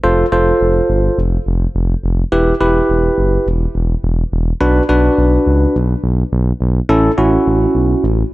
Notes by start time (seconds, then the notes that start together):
0.03 F1 F4 A4 C5
0.32 F1 F4 A4 C5
0.61 F1
0.89 G1
1.18 F1
1.46 F1
1.75 F1
2.04 F1
2.32 E1 E4 G4 B4
2.61 E1 E4 G4 B4
2.89 E1
3.18 F#1
3.46 E1
3.75 E1
4.04 E1
4.32 E1
4.61 B1 D4 F#4 B4
4.89 B1 D4 F#4 B4
5.18 B1
5.46 C#2
5.75 B1
6.03 B1
6.32 B1
6.61 B1
6.89 A1 C#4 E4 A4
7.18 A1 C#4 E4 F#4
7.46 A1
7.75 B1
8.03 A1